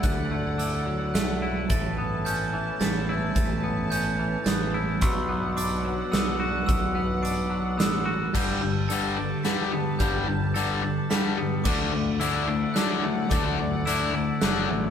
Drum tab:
CC |------|------|------|------|
HH |x-x-x-|x-x-x-|x-x-x-|x-x-x-|
SD |----o-|----o-|----o-|----o-|
BD |o-----|o-----|o-----|o-----|

CC |------|x-----|------|x-----|
HH |x-x-x-|--x-x-|x-x-x-|--x-x-|
SD |----o-|----o-|----o-|----o-|
BD |o-----|o-----|o-----|o-----|

CC |------|
HH |x-x-x-|
SD |----o-|
BD |o-----|